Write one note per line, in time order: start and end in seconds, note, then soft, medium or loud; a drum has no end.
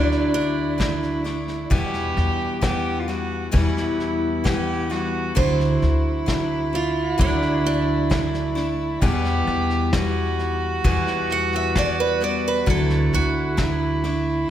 0.00 1.68 D2 medium
0.00 0.79 D3 medium
0.00 0.77 F#3 medium
0.00 0.77 A3 medium
0.00 0.33 D4 medium
0.00 0.78 D4 medium
0.00 0.80 E4 medium
0.00 1.72 E4 loud
0.12 snare soft
0.34 3.04 D4 medium
0.34 snare soft
0.78 1.25 F#3 medium
0.78 1.24 A3 medium
0.78 1.24 D4 medium
0.78 1.23 E4 medium
0.78 kick medium
0.78 snare medium
1.03 snare soft
1.24 1.71 A3 soft
1.24 1.71 D4 soft
1.24 1.70 E4 medium
1.24 snare soft
1.48 snare soft
1.70 2.62 E2 medium
1.70 2.15 E2 medium
1.70 2.62 B2 medium
1.70 2.61 E3 medium
1.70 2.61 G3 medium
1.70 2.61 B3 medium
1.70 2.62 E4 medium
1.70 2.60 G4 loud
1.70 kick medium
1.70 snare soft
1.94 snare soft
2.17 3.50 E2 medium
2.17 snare soft
2.61 3.08 E3 medium
2.61 3.08 G3 medium
2.61 3.07 B3 medium
2.61 3.07 E4 medium
2.61 3.01 G4 loud
2.61 kick medium
2.61 snare medium
3.00 3.09 F4 medium
3.08 3.51 E3 soft
3.08 3.51 G3 soft
3.08 3.51 B3 soft
3.08 3.52 E4 soft
3.08 3.52 F#4 medium
3.08 snare soft
3.51 4.44 E2 medium
3.51 5.33 E2 medium
3.51 4.44 B2 medium
3.51 4.43 E3 medium
3.51 4.43 G3 medium
3.51 4.43 B3 medium
3.51 4.46 E4 loud
3.51 4.45 E4 loud
3.51 kick medium
3.51 snare soft
3.77 snare soft
4.00 snare soft
4.44 4.89 E3 medium
4.44 4.90 G3 medium
4.44 4.89 B3 medium
4.44 4.88 E4 medium
4.44 4.92 G4 loud
4.44 kick medium
4.44 snare medium
4.90 5.35 E3 soft
4.90 5.35 G3 soft
4.90 5.36 B3 medium
4.90 5.35 E4 medium
4.90 5.37 F#4 medium
4.90 snare soft
5.35 5.80 D2 loud
5.35 6.27 D3 medium
5.35 6.25 F#3 medium
5.35 6.26 A3 medium
5.35 6.26 D4 medium
5.35 9.02 E4 loud
5.35 6.28 E4 medium
5.35 6.70 C5 medium
5.35 kick medium
5.35 snare soft
5.60 snare soft
5.82 7.15 D2 medium
5.82 snare soft
6.26 6.73 F#3 medium
6.26 6.72 A3 medium
6.26 6.72 D4 medium
6.26 6.74 E4 medium
6.26 kick medium
6.26 snare medium
6.73 7.17 A3 soft
6.73 7.17 D4 soft
6.73 7.19 F4 medium
6.73 snare soft
7.18 8.98 D2 medium
7.18 8.10 D3 medium
7.18 8.09 F#3 medium
7.18 8.09 A3 medium
7.18 8.09 D4 medium
7.18 7.64 D4 medium
7.18 8.11 E4 medium
7.18 kick medium
7.18 snare soft
7.42 snare soft
7.65 10.36 D4 medium
7.65 snare soft
8.10 8.56 F#3 medium
8.10 8.56 A3 medium
8.10 8.54 D4 medium
8.10 8.54 E4 medium
8.10 kick medium
8.10 snare medium
8.34 snare soft
8.55 9.02 A3 soft
8.55 9.02 D4 soft
8.55 9.01 E4 medium
8.55 snare soft
9.01 9.93 E2 medium
9.01 9.46 E2 loud
9.01 9.93 B2 medium
9.01 9.93 E3 medium
9.01 9.93 G3 medium
9.01 9.93 B3 medium
9.01 9.95 E4 medium
9.01 9.94 G4 loud
9.01 kick medium
9.01 snare soft
9.25 snare soft
9.47 10.80 E2 medium
9.47 snare soft
9.70 snare soft
9.92 10.85 E3 medium
9.92 10.84 G3 medium
9.92 10.84 B3 medium
9.92 10.85 E4 medium
9.92 12.68 F#4 loud
9.92 kick medium
9.92 snare medium
10.39 snare soft
10.84 11.76 E2 medium
10.84 12.63 E2 medium
10.84 11.76 B2 medium
10.84 11.74 E3 medium
10.84 11.75 G3 medium
10.84 11.76 B3 medium
10.84 11.76 E4 medium
10.84 kick medium
10.84 snare soft
11.07 snare soft
11.30 11.53 F#5 medium
11.30 snare soft
11.52 11.77 E5 medium
11.52 snare soft
11.75 12.21 E3 medium
11.75 12.21 G3 medium
11.75 12.20 B3 medium
11.75 12.19 E4 medium
11.75 11.99 D5 medium
11.75 kick medium
11.75 snare medium
12.00 12.22 B4 medium
12.21 12.66 E3 soft
12.21 12.67 G3 soft
12.21 12.67 B3 medium
12.21 12.66 E4 medium
12.21 12.45 D5 medium
12.21 snare soft
12.48 12.68 B4 medium
12.66 13.11 D2 loud
12.66 13.58 D3 medium
12.66 13.56 F#3 medium
12.66 13.56 A3 medium
12.66 13.58 D4 medium
12.66 14.50 E4 loud
12.66 13.58 E4 medium
12.66 13.13 A4 medium
12.66 kick medium
12.66 snare soft
12.90 snare soft
13.13 14.46 D2 medium
13.13 13.58 F#4 medium
13.13 snare soft
13.57 14.03 F#3 medium
13.57 14.04 A3 medium
13.57 14.04 D4 medium
13.57 14.03 E4 medium
13.57 kick medium
13.57 snare medium
14.04 14.49 A3 soft
14.04 14.49 D4 soft
14.04 14.49 E4 medium
14.04 snare soft